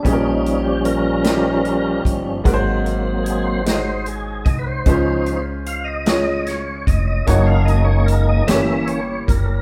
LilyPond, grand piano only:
<<
  \new Staff \with { instrumentName = "Grand piano" } { \time 6/8 \key des \major \tempo 4. = 50 <g des' ees' aes' bes'>4~ <g des' ees' aes' bes'>16 r16 <g des' ees' f' g'>4~ <g des' ees' f' g'>16 r16 | <aes ees' ges' bes' c''>4~ <aes ees' ges' bes' c''>16 r16 <aes ees' ges' des'' ees''>4~ <aes ees' ges' des'' ees''>16 r16 | <aes des' f' c''>4~ <aes des' f' c''>16 r16 <aes des' f' des''>4~ <aes des' f' des''>16 r16 | <bes ees' ges' des''>4~ <bes ees' ges' des''>16 r16 <a bes e' g' des''>4~ <a bes e' g' des''>16 r16 | }
  \new Staff \with { instrumentName = "Grand piano" } { \clef bass \time 6/8 \key des \major bes,4. r4. | aes,4. r4. | des4. r4. | r4. g4. | }
>>